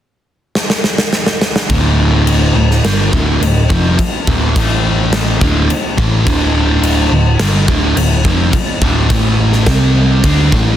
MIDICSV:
0, 0, Header, 1, 5, 480
1, 0, Start_track
1, 0, Tempo, 569801
1, 1436, Time_signature, 4, 2, 24, 8
1, 9070, End_track
2, 0, Start_track
2, 0, Title_t, "Distorted electric guitar"
2, 0, Program_c, 0, 30
2, 1428, Note_on_c, 0, 38, 74
2, 1435, Note_on_c, 0, 45, 94
2, 1440, Note_on_c, 0, 50, 90
2, 2146, Note_off_c, 0, 38, 0
2, 2150, Note_off_c, 0, 45, 0
2, 2152, Note_off_c, 0, 50, 0
2, 2155, Note_on_c, 0, 38, 58
2, 2159, Note_on_c, 0, 45, 69
2, 2349, Note_off_c, 0, 38, 0
2, 2351, Note_off_c, 0, 45, 0
2, 2396, Note_on_c, 0, 43, 95
2, 2403, Note_on_c, 0, 50, 96
2, 2405, Note_on_c, 0, 55, 105
2, 2629, Note_off_c, 0, 43, 0
2, 2632, Note_on_c, 0, 38, 93
2, 2633, Note_off_c, 0, 50, 0
2, 2635, Note_off_c, 0, 55, 0
2, 2639, Note_on_c, 0, 45, 97
2, 2644, Note_on_c, 0, 50, 85
2, 2868, Note_off_c, 0, 38, 0
2, 2872, Note_off_c, 0, 45, 0
2, 2874, Note_off_c, 0, 50, 0
2, 2879, Note_on_c, 0, 38, 64
2, 2880, Note_on_c, 0, 45, 61
2, 3071, Note_off_c, 0, 38, 0
2, 3072, Note_off_c, 0, 45, 0
2, 3116, Note_on_c, 0, 41, 82
2, 3118, Note_on_c, 0, 48, 83
2, 3125, Note_on_c, 0, 53, 88
2, 3350, Note_off_c, 0, 41, 0
2, 3351, Note_off_c, 0, 48, 0
2, 3355, Note_off_c, 0, 53, 0
2, 3604, Note_on_c, 0, 38, 90
2, 3609, Note_on_c, 0, 45, 94
2, 3614, Note_on_c, 0, 50, 84
2, 3846, Note_off_c, 0, 38, 0
2, 3846, Note_off_c, 0, 45, 0
2, 3846, Note_on_c, 0, 45, 107
2, 3849, Note_on_c, 0, 52, 108
2, 3854, Note_off_c, 0, 50, 0
2, 3854, Note_on_c, 0, 57, 111
2, 4554, Note_off_c, 0, 45, 0
2, 4557, Note_off_c, 0, 52, 0
2, 4560, Note_off_c, 0, 57, 0
2, 4560, Note_on_c, 0, 38, 89
2, 4564, Note_on_c, 0, 45, 86
2, 4569, Note_on_c, 0, 50, 96
2, 4793, Note_off_c, 0, 38, 0
2, 4795, Note_off_c, 0, 45, 0
2, 4797, Note_off_c, 0, 50, 0
2, 5031, Note_on_c, 0, 45, 96
2, 5038, Note_on_c, 0, 52, 94
2, 5040, Note_on_c, 0, 57, 106
2, 5268, Note_off_c, 0, 45, 0
2, 5272, Note_off_c, 0, 52, 0
2, 5272, Note_on_c, 0, 38, 88
2, 5273, Note_off_c, 0, 57, 0
2, 5278, Note_on_c, 0, 45, 91
2, 5281, Note_on_c, 0, 50, 110
2, 5986, Note_off_c, 0, 38, 0
2, 5991, Note_off_c, 0, 45, 0
2, 5993, Note_off_c, 0, 50, 0
2, 5996, Note_on_c, 0, 38, 66
2, 6002, Note_on_c, 0, 45, 74
2, 6189, Note_off_c, 0, 38, 0
2, 6192, Note_off_c, 0, 45, 0
2, 6234, Note_on_c, 0, 43, 98
2, 6236, Note_on_c, 0, 50, 97
2, 6244, Note_on_c, 0, 55, 113
2, 6463, Note_off_c, 0, 43, 0
2, 6465, Note_off_c, 0, 50, 0
2, 6466, Note_on_c, 0, 38, 82
2, 6471, Note_off_c, 0, 55, 0
2, 6474, Note_on_c, 0, 45, 98
2, 6475, Note_on_c, 0, 50, 98
2, 6703, Note_off_c, 0, 45, 0
2, 6705, Note_off_c, 0, 38, 0
2, 6709, Note_off_c, 0, 50, 0
2, 6714, Note_on_c, 0, 38, 57
2, 6714, Note_on_c, 0, 45, 76
2, 6908, Note_off_c, 0, 38, 0
2, 6908, Note_off_c, 0, 45, 0
2, 6950, Note_on_c, 0, 41, 106
2, 6955, Note_on_c, 0, 48, 105
2, 6964, Note_on_c, 0, 53, 110
2, 7184, Note_off_c, 0, 41, 0
2, 7189, Note_off_c, 0, 48, 0
2, 7193, Note_off_c, 0, 53, 0
2, 7429, Note_on_c, 0, 38, 82
2, 7431, Note_on_c, 0, 45, 103
2, 7438, Note_on_c, 0, 50, 93
2, 7659, Note_off_c, 0, 45, 0
2, 7666, Note_off_c, 0, 38, 0
2, 7669, Note_on_c, 0, 45, 100
2, 7670, Note_off_c, 0, 50, 0
2, 7673, Note_on_c, 0, 52, 104
2, 7677, Note_on_c, 0, 57, 120
2, 8143, Note_off_c, 0, 45, 0
2, 8147, Note_off_c, 0, 52, 0
2, 8147, Note_on_c, 0, 48, 97
2, 8149, Note_off_c, 0, 57, 0
2, 8154, Note_on_c, 0, 55, 94
2, 8157, Note_on_c, 0, 60, 100
2, 8623, Note_off_c, 0, 48, 0
2, 8627, Note_off_c, 0, 55, 0
2, 8628, Note_off_c, 0, 60, 0
2, 8637, Note_on_c, 0, 50, 85
2, 8642, Note_on_c, 0, 57, 83
2, 8649, Note_on_c, 0, 62, 93
2, 8868, Note_off_c, 0, 50, 0
2, 8871, Note_off_c, 0, 57, 0
2, 8872, Note_on_c, 0, 45, 90
2, 8874, Note_off_c, 0, 62, 0
2, 8877, Note_on_c, 0, 52, 91
2, 8882, Note_on_c, 0, 57, 105
2, 9070, Note_off_c, 0, 45, 0
2, 9070, Note_off_c, 0, 52, 0
2, 9070, Note_off_c, 0, 57, 0
2, 9070, End_track
3, 0, Start_track
3, 0, Title_t, "Picked electric bass"
3, 0, Program_c, 1, 34
3, 1428, Note_on_c, 1, 26, 78
3, 2120, Note_off_c, 1, 26, 0
3, 2153, Note_on_c, 1, 26, 83
3, 2379, Note_off_c, 1, 26, 0
3, 2391, Note_on_c, 1, 31, 91
3, 2618, Note_off_c, 1, 31, 0
3, 2640, Note_on_c, 1, 26, 95
3, 2863, Note_off_c, 1, 26, 0
3, 2871, Note_on_c, 1, 26, 78
3, 3098, Note_off_c, 1, 26, 0
3, 3121, Note_on_c, 1, 29, 93
3, 3343, Note_off_c, 1, 29, 0
3, 3605, Note_on_c, 1, 26, 106
3, 3826, Note_off_c, 1, 26, 0
3, 3842, Note_on_c, 1, 33, 82
3, 4527, Note_off_c, 1, 33, 0
3, 4560, Note_on_c, 1, 26, 91
3, 4783, Note_off_c, 1, 26, 0
3, 5039, Note_on_c, 1, 33, 85
3, 5262, Note_off_c, 1, 33, 0
3, 5279, Note_on_c, 1, 26, 82
3, 5965, Note_off_c, 1, 26, 0
3, 5992, Note_on_c, 1, 26, 81
3, 6219, Note_off_c, 1, 26, 0
3, 6228, Note_on_c, 1, 31, 98
3, 6456, Note_off_c, 1, 31, 0
3, 6471, Note_on_c, 1, 26, 91
3, 6697, Note_off_c, 1, 26, 0
3, 6704, Note_on_c, 1, 26, 80
3, 6934, Note_off_c, 1, 26, 0
3, 6953, Note_on_c, 1, 29, 91
3, 7178, Note_off_c, 1, 29, 0
3, 7424, Note_on_c, 1, 26, 95
3, 7653, Note_off_c, 1, 26, 0
3, 7668, Note_on_c, 1, 33, 94
3, 8118, Note_off_c, 1, 33, 0
3, 8147, Note_on_c, 1, 36, 99
3, 8597, Note_off_c, 1, 36, 0
3, 8621, Note_on_c, 1, 38, 93
3, 8850, Note_off_c, 1, 38, 0
3, 8867, Note_on_c, 1, 33, 94
3, 9070, Note_off_c, 1, 33, 0
3, 9070, End_track
4, 0, Start_track
4, 0, Title_t, "Muted distorted electric guitar strokes"
4, 3356, Note_on_c, 9, 29, 60
4, 3440, Note_off_c, 9, 29, 0
4, 7188, Note_on_c, 9, 29, 62
4, 7272, Note_off_c, 9, 29, 0
4, 9070, End_track
5, 0, Start_track
5, 0, Title_t, "Drums"
5, 466, Note_on_c, 9, 38, 69
5, 551, Note_off_c, 9, 38, 0
5, 589, Note_on_c, 9, 38, 78
5, 673, Note_off_c, 9, 38, 0
5, 708, Note_on_c, 9, 38, 76
5, 792, Note_off_c, 9, 38, 0
5, 829, Note_on_c, 9, 38, 105
5, 913, Note_off_c, 9, 38, 0
5, 949, Note_on_c, 9, 38, 82
5, 1033, Note_off_c, 9, 38, 0
5, 1065, Note_on_c, 9, 38, 83
5, 1149, Note_off_c, 9, 38, 0
5, 1192, Note_on_c, 9, 38, 85
5, 1276, Note_off_c, 9, 38, 0
5, 1312, Note_on_c, 9, 38, 100
5, 1396, Note_off_c, 9, 38, 0
5, 1430, Note_on_c, 9, 36, 115
5, 1431, Note_on_c, 9, 49, 63
5, 1515, Note_off_c, 9, 36, 0
5, 1515, Note_off_c, 9, 49, 0
5, 1913, Note_on_c, 9, 49, 70
5, 1997, Note_off_c, 9, 49, 0
5, 2282, Note_on_c, 9, 38, 29
5, 2366, Note_off_c, 9, 38, 0
5, 2398, Note_on_c, 9, 38, 116
5, 2398, Note_on_c, 9, 49, 60
5, 2482, Note_off_c, 9, 38, 0
5, 2482, Note_off_c, 9, 49, 0
5, 2637, Note_on_c, 9, 36, 99
5, 2721, Note_off_c, 9, 36, 0
5, 2885, Note_on_c, 9, 49, 60
5, 2970, Note_off_c, 9, 49, 0
5, 3118, Note_on_c, 9, 36, 116
5, 3203, Note_off_c, 9, 36, 0
5, 3359, Note_on_c, 9, 36, 100
5, 3360, Note_on_c, 9, 49, 62
5, 3444, Note_off_c, 9, 36, 0
5, 3444, Note_off_c, 9, 49, 0
5, 3600, Note_on_c, 9, 36, 105
5, 3685, Note_off_c, 9, 36, 0
5, 3841, Note_on_c, 9, 36, 127
5, 3846, Note_on_c, 9, 49, 66
5, 3925, Note_off_c, 9, 36, 0
5, 3930, Note_off_c, 9, 49, 0
5, 4319, Note_on_c, 9, 38, 114
5, 4319, Note_on_c, 9, 49, 55
5, 4403, Note_off_c, 9, 38, 0
5, 4403, Note_off_c, 9, 49, 0
5, 4560, Note_on_c, 9, 36, 100
5, 4645, Note_off_c, 9, 36, 0
5, 4802, Note_on_c, 9, 49, 53
5, 4887, Note_off_c, 9, 49, 0
5, 5039, Note_on_c, 9, 36, 107
5, 5123, Note_off_c, 9, 36, 0
5, 5279, Note_on_c, 9, 36, 115
5, 5288, Note_on_c, 9, 49, 60
5, 5364, Note_off_c, 9, 36, 0
5, 5372, Note_off_c, 9, 49, 0
5, 5757, Note_on_c, 9, 49, 72
5, 5842, Note_off_c, 9, 49, 0
5, 6229, Note_on_c, 9, 38, 100
5, 6229, Note_on_c, 9, 49, 67
5, 6314, Note_off_c, 9, 38, 0
5, 6314, Note_off_c, 9, 49, 0
5, 6471, Note_on_c, 9, 36, 92
5, 6556, Note_off_c, 9, 36, 0
5, 6713, Note_on_c, 9, 49, 67
5, 6797, Note_off_c, 9, 49, 0
5, 6949, Note_on_c, 9, 36, 100
5, 7033, Note_off_c, 9, 36, 0
5, 7187, Note_on_c, 9, 36, 107
5, 7187, Note_on_c, 9, 49, 63
5, 7272, Note_off_c, 9, 36, 0
5, 7272, Note_off_c, 9, 49, 0
5, 7427, Note_on_c, 9, 36, 100
5, 7511, Note_off_c, 9, 36, 0
5, 7667, Note_on_c, 9, 36, 122
5, 7667, Note_on_c, 9, 49, 60
5, 7751, Note_off_c, 9, 36, 0
5, 7751, Note_off_c, 9, 49, 0
5, 8025, Note_on_c, 9, 38, 34
5, 8109, Note_off_c, 9, 38, 0
5, 8141, Note_on_c, 9, 38, 103
5, 8141, Note_on_c, 9, 49, 52
5, 8144, Note_on_c, 9, 36, 98
5, 8225, Note_off_c, 9, 38, 0
5, 8225, Note_off_c, 9, 49, 0
5, 8228, Note_off_c, 9, 36, 0
5, 8625, Note_on_c, 9, 36, 103
5, 8626, Note_on_c, 9, 49, 54
5, 8709, Note_off_c, 9, 36, 0
5, 8710, Note_off_c, 9, 49, 0
5, 8865, Note_on_c, 9, 36, 102
5, 8949, Note_off_c, 9, 36, 0
5, 9070, End_track
0, 0, End_of_file